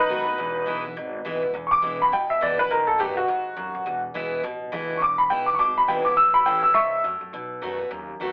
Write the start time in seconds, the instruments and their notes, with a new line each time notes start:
Already playing: steel-string acoustic guitar F#2, upright piano D#4
0.00 upright piano B4
0.08 upright bass G#2, steel-string acoustic guitar D#3 A3 B3 F#4
0.25 upright bass A2, steel-string acoustic guitar B3 F#4
0.38 upright bass E1, steel-string acoustic guitar E2
0.66 upright bass B1, steel-string acoustic guitar E3 G#3 B3 E4
0.84 steel-string acoustic guitar B3 E4
0.97 upright bass G#1, steel-string acoustic guitar B2
1.25 upright bass G#1, steel-string acoustic guitar E3 G#3 B3 E4
1.42 upright bass C#2, steel-string acoustic guitar B3 E4
1.54 upright bass E1, steel-string acoustic guitar E2
1.67 upright piano C#6
1.71 upright piano D6
1.81 upright bass E1, steel-string acoustic guitar E3 G#3 B3 E4
1.99 steel-string acoustic guitar B3 E4, upright piano B5
2.12 upright bass A1, steel-string acoustic guitar B2, upright piano G5
2.30 upright piano E5
2.41 upright bass C#2, steel-string acoustic guitar E3 G#3 B3 E4, upright piano D5
2.58 upright bass A#1, steel-string acoustic guitar B3 E4, upright piano B4
2.70 upright bass B1, steel-string acoustic guitar B2, upright piano A#4
2.87 upright piano A4
2.98 upright bass F#2, steel-string acoustic guitar D#3 A3 B3 F#4, upright piano G4
3.15 steel-string acoustic guitar B3 F#4, upright piano F#4
3.28 upright bass D#2, steel-string acoustic guitar G#2
3.56 upright bass D#2, steel-string acoustic guitar F#2
3.75 upright bass A1
3.86 upright bass E1, steel-string acoustic guitar E2
4.14 upright bass E1, steel-string acoustic guitar E3 G#3 B3 E4
4.44 upright bass A1, steel-string acoustic guitar B2
4.72 upright bass C#2, steel-string acoustic guitar E3 G#3 B3 E4
4.90 upright bass C#2
4.98 upright bass E1, steel-string acoustic guitar E2, upright piano C#6
5.02 upright piano D6
5.18 upright piano B5
5.30 upright bass B1, steel-string acoustic guitar E3 G#3 B3 E4, upright piano G5
5.46 steel-string acoustic guitar B3 E4, upright piano D6
5.55 upright piano C#6
5.59 upright bass G#1, steel-string acoustic guitar B2, upright piano D6
5.78 upright piano B5
5.88 upright bass G#1, steel-string acoustic guitar E3 G#3 B3 E4, upright piano G5
6.05 upright bass C#2, steel-string acoustic guitar B3 E4, upright piano D6
6.17 upright bass A1, steel-string acoustic guitar A2, upright piano E6
6.34 upright piano B5
6.45 upright bass A1, steel-string acoustic guitar E3 A3 C#4 E4, upright piano G5
6.63 steel-string acoustic guitar C#4 E4, upright piano E6
6.74 upright bass C#2, steel-string acoustic guitar G#2, upright piano E5 C#6
7.04 upright bass F#2, steel-string acoustic guitar A2
7.21 upright bass F#2
7.33 upright bass B1, steel-string acoustic guitar B2
7.62 upright bass F#2, steel-string acoustic guitar D#3 A3 B3 F#4
7.78 steel-string acoustic guitar B3 F#4
7.91 upright bass D#2, steel-string acoustic guitar F#2
8.20 upright bass D#2, steel-string acoustic guitar D#3 A3 B3 F#4